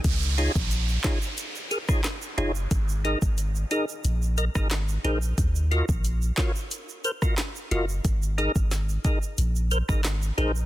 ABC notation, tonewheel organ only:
X:1
M:4/4
L:1/16
Q:1/4=90
K:Db
V:1 name="Tonewheel organ"
z2 [EFAd] z3 [EFAd] z3 [AB] [EFAd] z2 [EFAd] z | z2 [EABe] z3 [EABe] z3 [Be] [EABe] z2 [EABc] z | z2 [FGBe] z3 [FGBd] z3 [Bc] [FGBe] z2 [FGBe] z | z2 [EABe] z3 [EABe] z3 [Bc] [EABe] z2 [EABc] z |]